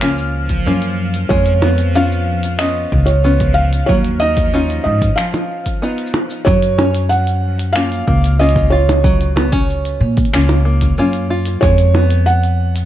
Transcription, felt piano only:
1.29 C#5
1.95 F5
2.59 D#5
3.06 C#5
3.54 F5
3.86 C#5
4.20 D#5
4.84 D#5
5.16 F5
6.45 C#5
7.09 F#5
7.73 F5
8.39 D#5
8.70 C#5
11.61 C#5
12.26 F#5

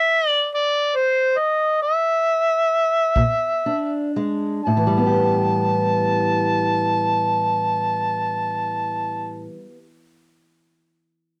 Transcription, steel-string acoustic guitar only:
3.17 A#2
3.66 D4
4.16 G#3
4.67 A2
4.77 E3
4.87 G3
4.97 B3
5.07 G4

